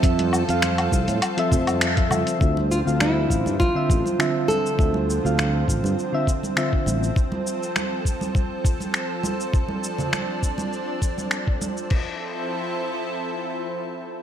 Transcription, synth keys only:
X:1
M:4/4
L:1/16
Q:"Swing 16ths" 1/4=101
K:F
V:1 name="Synth keys"
[F,CAe] z2 [F,CAf]3 [F,CAf]2 z [F,CAe] [F,CAe]3 [F,CAe] [F,CAe]2 | [D,CFe] z2 [D,CFf]3 [D,CFf]2 z [D,CFe] z2 [D,CFe]4 | [D,CFe] z2 [D,CFf]3 [D,CFf]2 z [D,CFe] z2 [D,CFe]4 | z16 |
z16 | z16 |]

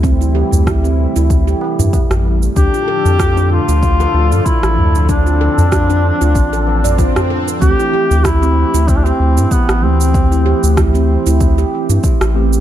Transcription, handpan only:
X:1
M:4/4
L:1/16
Q:"Swing 16ths" 1/4=95
K:Cmix
V:1 name="Handpan"
C E G2 E C z E z G z E z4 | D F A2 F D z F z A z F z4 | D F A2 F D z F z A z d F D A z | C E G2 E C z E z G z E z4 |
C E G2 E C z E z G z E z4 |]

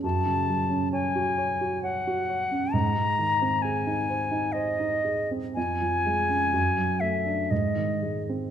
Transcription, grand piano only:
X:1
M:3/4
L:1/16
Q:1/4=66
K:Abmix
V:1 name="Grand piano"
G,, D, G, D d G d G d G d D | A,, A, E, C A E c E c E A C | F,, F, A, D ^F,, ^F, =A, =D _A,, E, _A, C |]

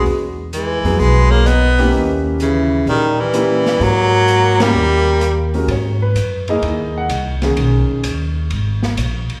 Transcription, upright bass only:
X:1
M:4/4
L:1/8
Q:"Swing" 1/4=128
K:G#m
V:1 name="Upright bass" clef=bass
E,,3 ^E,, B,,,4 | D,,4 A,,4 | G,,4 D,,4 | G,,2 F,,2 D,,2 ^B,,,2 |
B,,, z D,,2 G,,,2 A,,, z |]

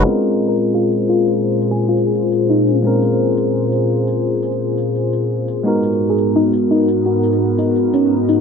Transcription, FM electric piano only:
X:1
M:4/4
L:1/16
Q:1/4=171
K:Abmix
V:1 name="FM electric piano"
z4 z B2 z F2 z2 F2 z2 | z3 A2 F2 z4 z E3 z | z16 | z16 |
z4 z A2 z E2 z2 E2 z2 | G2 z4 E2 z2 D2 z2 E2 |]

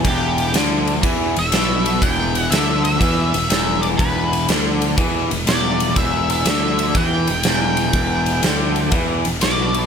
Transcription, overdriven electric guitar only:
X:1
M:4/4
L:1/8
Q:"Swing" 1/4=122
K:Em
V:1 name="Overdriven electric guitar" clef=bass
E,,2 D,2 E, E,, B,,2 | E,,2 D,2 E, E,, E,,2 | E,,2 D,2 E, E,, E,,2 | E,,2 D,2 E, E,, E,,2 |
E,,2 D,2 E, E,, B,,2 |]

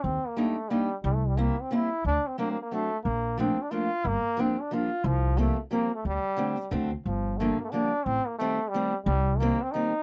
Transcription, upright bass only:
X:1
M:3/4
L:1/8
Q:"Swing" 1/4=180
K:Gm
V:1 name="Upright bass" clef=bass
E,, z4 z | C,,4 z2 | D,, z4 z | B,,,4 z2 |
G,,, z4 z | C,,4 z2 | D,, z3 D,,2 | G,,,4 z2 |
A,,, z4 z | C,,4 z2 |]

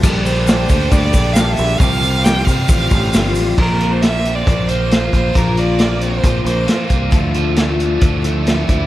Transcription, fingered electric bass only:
X:1
M:4/4
L:1/8
Q:1/4=135
K:Bblyd
V:1 name="Fingered electric bass" clef=bass
B,,,3 D,, D,, B,,,2 B,,, | C,,3 C, A,,, A,,, G,,, A,,, | B,,,4 B,,,3 B,,, | B,,,4 B,,, B,,, z C,, |
D,,4 D,,3 D,, |]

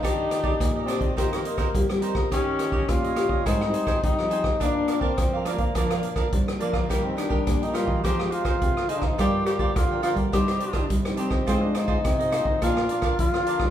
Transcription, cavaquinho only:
X:1
M:4/4
L:1/16
Q:1/4=105
K:Eb
V:1 name="Cavaquinho"
[DGde]2 [DGde] [DGde] z [Gde] [DGde] [Gde] [EBce] [Bce] [EBce] [EBce] z2 [EBce] [Bce] | [G_de]2 [Gde] [Gde] z [de] [Gde] [de] [Aceg] [ceg] [Aceg] [Aceg] z2 [Aceg] [ceg] | [DBdf]2 [DBdf] [DBdf] z [Bdf] [DBdf] [Bdf] [DBdf] [Bdf] [DBdf] [DBdf] z2 [DBdf] [Bdf] | [GBeg]2 [GBeg] [GBeg] z [Beg] [GBeg] [Beg] [EAcf] [Acf] [EAcf] [EAcf] z2 [EAcf] [Acf] |
[FBdg]2 [FBdg] [FBdg] z [Bdg] [FBdg] [Bdg] [DGce] [Gce] [DGce] [DGce] z2 [DGce] [Gce] | [FAce]2 [FAce] [FAce] z [Ace] [FAce] [Ace] [DBdf] [Bdf] [DBdf] [DBdf] z2 [DBdf] [Bdf] |]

